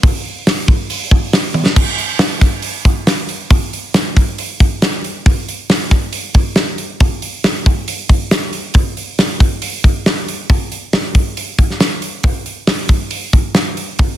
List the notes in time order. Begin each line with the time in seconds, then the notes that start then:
0.03 kick, open hi-hat
0.47 snare, open hi-hat
0.68 kick
0.90 open hi-hat
1.11 kick
1.33 snare, open hi-hat
1.54 high tom
1.66 snare
1.76 kick, crash
1.98 open hi-hat
2.19 snare, open hi-hat
2.41 kick, snare, open hi-hat
2.62 open hi-hat
2.85 kick, open hi-hat
3.07 snare, open hi-hat
3.29 open hi-hat
3.50 kick, open hi-hat
3.73 open hi-hat
3.94 snare, open hi-hat
4.17 kick, open hi-hat
4.38 open hi-hat
4.60 kick, open hi-hat
4.82 snare, open hi-hat
5.04 open hi-hat
5.26 kick, open hi-hat
5.48 open hi-hat
5.70 snare, open hi-hat
5.91 kick, snare, open hi-hat
6.13 open hi-hat
6.34 kick, open hi-hat
6.56 snare, open hi-hat
6.78 open hi-hat
7.00 kick, open hi-hat
7.22 open hi-hat
7.44 snare, open hi-hat
7.66 kick, open hi-hat
7.88 open hi-hat
8.09 kick, open hi-hat
8.31 snare, open hi-hat
8.53 open hi-hat
8.74 kick, open hi-hat
8.97 open hi-hat
9.19 snare, open hi-hat
9.40 kick, open hi-hat
9.62 open hi-hat
9.84 kick, open hi-hat
10.06 snare, open hi-hat
10.28 open hi-hat
10.50 kick, open hi-hat
10.72 open hi-hat
10.93 snare, open hi-hat
11.15 kick, open hi-hat
11.37 open hi-hat
11.58 kick, open hi-hat
11.70 snare
11.80 snare, open hi-hat
12.02 open hi-hat
12.23 kick, open hi-hat
12.46 open hi-hat
12.67 snare, open hi-hat
12.89 kick, open hi-hat
13.11 open hi-hat
13.33 kick, open hi-hat
13.54 snare, open hi-hat
13.77 open hi-hat
13.99 kick, open hi-hat